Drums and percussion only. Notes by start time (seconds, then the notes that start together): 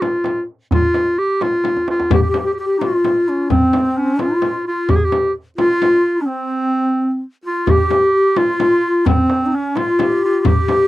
0.02 tombak tek, frame drum
0.24 tombak tek, frame drum
0.71 tombak dum, frame drum
0.94 tombak tek, frame drum
1.18 tombak ka
1.41 tombak tek, frame drum
1.64 tombak tek, frame drum
1.77 tombak ka
1.88 tombak tek
2.00 tombak ka
2.10 tombak dum, frame drum
2.34 tombak tek, frame drum
2.81 tombak tek, frame drum
3.05 tombak tek, frame drum
3.50 frame drum, tombak dum
3.73 tombak tek, frame drum
4.19 tombak tek, frame drum
4.42 tombak tek, frame drum
4.89 frame drum, tombak dum
5.12 tombak tek, frame drum
5.58 tombak tek, frame drum
5.82 tombak tek, frame drum
7.67 frame drum, tombak dum
7.91 tombak tek, frame drum
8.36 tombak tek, frame drum
8.60 tombak tek, frame drum
9.06 tombak dum, frame drum
9.30 tombak tek
9.76 tombak tek, frame drum
9.99 tombak tek, frame drum
10.45 frame drum, tombak dum
10.68 tombak tek, frame drum